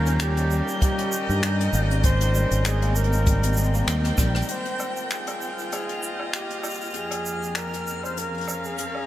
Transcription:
0.00 0.60 D#2 medium
0.00 0.41 G3 medium
0.00 2.04 G3 medium
0.00 0.80 A#3 medium
0.00 2.04 C#4 medium
0.00 0.24 A#4 loud
0.00 5.48 A#4 medium
0.00 0.58 F5 medium
0.00 4.50 G6 medium
0.06 0.98 C#4 medium
0.06 closed hi-hat soft
0.06 shaker soft
0.20 0.82 G4 medium
0.20 finger snap medium
0.20 closed hi-hat medium
0.20 shaker medium
0.37 1.28 D#3 medium
0.37 closed hi-hat medium
0.37 shaker soft
0.50 1.33 G3 medium
0.50 shaker medium
0.68 3.03 D#5 medium
0.68 shaker soft
0.81 1.73 A#3 medium
0.81 1.46 G4 medium
0.81 kick loud
0.81 closed hi-hat medium
0.81 shaker medium
0.98 1.90 C#4 medium
0.98 closed hi-hat medium
1.12 shaker medium
1.29 1.68 G2 medium
1.29 2.09 D#3 medium
1.29 shaker soft
1.43 2.09 G3 medium
1.43 1.92 D#4 medium
1.43 finger snap medium
1.43 closed hi-hat medium
1.43 shaker medium
1.60 closed hi-hat medium
1.73 2.44 G#1 medium
1.73 2.82 A#3 medium
1.73 shaker medium
1.91 5.77 C#4 medium
1.91 closed hi-hat soft
1.91 shaker soft
2.03 2.68 C5 loud
2.03 kick loud
2.03 closed hi-hat medium
2.03 shaker medium
2.21 3.12 D#3 medium
2.21 closed hi-hat medium
2.21 shaker soft
2.31 3.16 G3 medium
2.31 5.47 C4 medium
2.31 shaker medium
2.51 3.82 G#1 medium
2.51 closed hi-hat soft
2.51 shaker soft
2.65 3.16 G#3 medium
2.65 2.98 G#4 medium
2.65 finger snap medium
2.65 closed hi-hat medium
2.65 shaker medium
2.82 3.74 A#3 medium
2.82 closed hi-hat medium
2.96 3.88 A#4 loud
2.96 shaker medium
3.04 closed hi-hat soft
3.13 4.04 D#3 medium
3.13 7.93 G5 medium
3.13 shaker soft
3.26 4.08 G3 medium
3.26 kick loud
3.26 closed hi-hat medium
3.26 shaker medium
3.43 closed hi-hat medium
3.43 shaker soft
3.53 shaker soft
3.57 4.08 G#3 medium
3.57 shaker medium
3.63 shaker soft
3.74 8.03 A#3 medium
3.74 shaker soft
3.87 4.11 D#2 medium
3.87 finger snap loud
3.87 cross-stick medium
3.87 closed hi-hat medium
3.87 shaker medium
4.04 4.54 D#3 medium
4.04 cross-stick soft
4.04 closed hi-hat medium
4.18 4.42 A#1 medium
4.18 4.54 G3 medium
4.18 kick medium
4.18 cross-stick medium
4.18 shaker medium
4.35 cross-stick medium
4.35 closed hi-hat soft
4.42 shaker soft
4.49 5.06 C5 medium
4.49 9.06 F6 medium
4.49 closed hi-hat medium
4.49 shaker soft
4.65 closed hi-hat soft
4.79 7.92 F4 medium
4.79 low woodblock medium
4.79 shaker soft
4.79 shaker medium
4.97 shaker soft
5.05 5.13 A#4 medium
5.10 5.72 G#4 medium
5.10 finger snap medium
5.10 shaker soft
5.27 closed hi-hat soft
5.27 low woodblock medium
5.27 shaker soft
5.41 shaker medium
5.59 7.93 D#5 medium
5.59 shaker soft
5.72 6.29 G#4 medium
5.72 closed hi-hat medium
5.72 low woodblock medium
5.72 shaker soft
5.89 closed hi-hat soft
6.03 shaker medium
6.20 low woodblock medium
6.33 6.78 G4 medium
6.33 finger snap medium
6.33 closed hi-hat medium
6.33 shaker soft
6.50 closed hi-hat soft
6.63 low woodblock medium
6.63 shaker medium
6.70 shaker medium
6.74 shaker soft
6.81 shaker soft
6.84 shaker soft
6.90 9.06 F2 medium
6.90 shaker soft
6.94 7.58 G#4 medium
6.94 closed hi-hat medium
6.94 shaker medium
7.11 closed hi-hat soft
7.11 low woodblock medium
7.11 shaker soft
7.25 shaker medium
7.43 shaker soft
7.55 8.05 A#4 medium
7.55 finger snap medium
7.55 closed hi-hat medium
7.55 low woodblock medium
7.55 shaker soft
7.74 closed hi-hat soft
7.74 shaker soft
7.83 9.06 C#4 medium
7.87 shaker medium
8.03 9.06 A#4 medium
8.03 8.20 C5 medium
8.03 9.06 F5 medium
8.03 low woodblock medium
8.03 shaker soft
8.17 8.68 A#4 medium
8.17 closed hi-hat medium
8.17 shaker medium
8.34 closed hi-hat soft
8.38 closed hi-hat soft
8.41 closed hi-hat soft
8.44 closed hi-hat soft
8.44 low woodblock medium
8.48 shaker medium
8.64 8.78 G#4 medium
8.64 shaker soft
8.78 8.88 G#4 medium
8.78 closed hi-hat medium
8.78 shaker soft
8.86 8.96 A#4 medium
8.95 9.06 G#4 medium
8.95 low woodblock medium

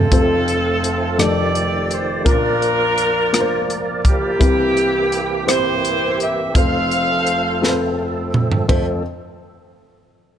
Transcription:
0.00 0.12 C4 medium
0.00 1.16 C4 medium
0.00 0.12 F4 medium
0.00 1.16 F4 medium
0.00 0.14 G#4 medium
0.00 0.14 A4 medium
0.00 1.17 A4 medium
0.00 0.13 C5 medium
0.12 1.15 F1 medium
0.12 1.15 F2 soft
0.12 4.36 F3 medium
0.12 2.24 A3 soft
0.12 0.77 C4 medium
0.12 1.18 C4 medium
0.12 0.77 F4 medium
0.12 0.19 G4 soft
0.12 1.18 A4 medium
0.12 0.77 C5 medium
0.12 kick medium
0.12 closed hi-hat medium
0.19 0.80 A4 medium
0.48 closed hi-hat soft
0.84 closed hi-hat soft
1.18 2.22 F1 medium
1.18 2.22 F2 medium
1.18 2.25 D#3 medium
1.18 1.83 D4 medium
1.18 1.84 D#4 soft
1.18 2.25 G4 medium
1.18 1.84 G4 medium
1.18 2.22 G4 medium
1.18 1.84 A4 medium
1.18 2.22 A4 medium
1.18 4.37 D5 medium
1.18 1.91 D5 medium
1.18 cross-stick medium
1.18 closed hi-hat medium
1.55 closed hi-hat soft
1.91 2.27 C5 medium
1.91 closed hi-hat soft
2.24 4.36 A#1 medium
2.24 4.36 A#2 soft
2.24 2.90 A#3 medium
2.24 6.51 A#3 soft
2.24 2.32 C#4 soft
2.24 3.75 D4 medium
2.24 2.90 F4 medium
2.24 2.91 A#4 medium
2.24 4.38 A#4 medium
2.24 3.79 A#4 medium
2.24 kick medium
2.24 closed hi-hat medium
2.28 2.94 D4 medium
2.28 3.75 F4 medium
2.62 closed hi-hat soft
2.98 closed hi-hat medium
3.33 3.98 A#3 medium
3.33 3.98 D4 medium
3.33 3.98 F4 medium
3.33 3.40 A#4 medium
3.33 cross-stick medium
3.33 closed hi-hat medium
3.41 4.02 C5 medium
3.70 closed hi-hat soft
4.05 5.45 A#3 medium
4.05 5.45 E4 medium
4.05 5.45 G4 medium
4.05 kick medium
4.05 closed hi-hat soft
4.39 6.50 C2 medium
4.39 6.50 C3 soft
4.39 6.53 E3 medium
4.39 5.05 C4 medium
4.39 8.66 C4 medium
4.39 5.05 E4 medium
4.39 5.05 G4 medium
4.39 6.53 G4 medium
4.39 5.05 A#4 medium
4.39 kick medium
4.39 closed hi-hat medium
4.77 closed hi-hat soft
5.12 closed hi-hat soft
5.46 6.12 C4 medium
5.46 6.12 E4 medium
5.46 6.52 E4 medium
5.46 6.13 G4 medium
5.46 6.52 G4 medium
5.46 6.13 C5 medium
5.46 6.20 C5 medium
5.46 cross-stick medium
5.46 closed hi-hat medium
5.85 closed hi-hat soft
6.20 6.53 E5 medium
6.20 closed hi-hat soft
6.54 8.66 F1 soft
6.54 8.66 F2 soft
6.54 8.67 F3 medium
6.54 8.67 A3 medium
6.54 7.20 C4 medium
6.54 7.20 F4 medium
6.54 8.67 A4 medium
6.54 7.21 A4 soft
6.54 7.95 A4 medium
6.54 7.21 C5 medium
6.54 7.95 C5 medium
6.54 7.94 F5 medium
6.54 kick medium
6.54 closed hi-hat medium
6.91 closed hi-hat soft
7.27 closed hi-hat soft
7.62 8.27 C4 medium
7.62 8.27 F4 medium
7.62 8.27 A4 medium
7.62 7.69 B4 medium
7.62 snare soft
7.69 8.31 C5 medium
8.34 mid tom medium
8.52 floor tom medium
8.68 9.02 F2 medium
8.68 9.03 F3 medium
8.68 9.03 A3 soft
8.68 9.02 C4 medium
8.68 9.03 C4 medium
8.68 9.02 F4 medium
8.68 9.02 A4 medium
8.68 9.03 A4 medium
8.68 9.02 C5 medium
8.68 kick medium
8.68 floor tom medium
8.68 ride bell medium

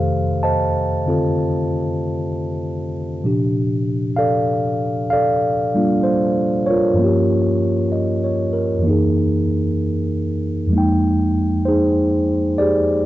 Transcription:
0.00 3.20 F2 soft
0.00 3.22 C3 soft
0.00 3.25 D#3 soft
0.00 3.23 A3 soft
0.00 3.25 G4 soft
0.00 1.08 A4 soft
0.00 0.43 C5 soft
0.00 0.39 F5 medium
0.43 2.91 C5 soft
0.43 2.90 D#5 soft
0.43 2.90 A5 medium
1.07 3.23 D3 soft
1.07 3.24 C4 soft
1.07 3.24 F4 soft
1.07 3.25 A4 soft
3.24 6.98 A#2 soft
3.24 6.98 C3 soft
3.24 6.95 F3 soft
3.24 5.75 D4 soft
3.24 6.99 G4 soft
4.16 5.12 A4 medium
4.16 5.12 D5 soft
4.16 5.06 F5 medium
5.10 6.95 A4 medium
5.10 6.95 D5 medium
5.10 6.07 F5 medium
5.75 6.98 G3 soft
5.75 6.98 A#3 soft
5.75 6.98 D4 soft
5.75 6.69 F4 soft
6.04 6.70 C5 medium
6.66 8.82 F4 soft
6.66 8.52 A#4 soft
6.66 8.23 C#5 medium
6.94 8.82 G2 soft
6.94 8.84 F3 soft
6.99 8.83 A#3 soft
6.99 8.86 C#4 soft
7.04 8.88 G4 soft
7.92 8.51 D#5 soft
8.24 8.72 C#5 soft
8.53 9.02 A#4 soft
8.79 10.68 F#2 soft
8.79 10.70 E3 soft
8.84 10.71 A#3 soft
8.84 10.73 D#4 soft
8.90 10.74 G#4 soft
10.67 13.06 F2 soft
10.67 13.06 F3 soft
10.71 13.06 G#3 soft
10.71 13.06 A#3 soft
10.76 11.67 D#4 soft
10.76 13.06 G5 soft
11.65 13.06 D#4 soft
11.65 12.58 G#4 soft
11.65 12.54 C5 medium
12.58 13.06 G4 medium
12.58 13.06 G#4 medium
12.58 13.06 D5 medium

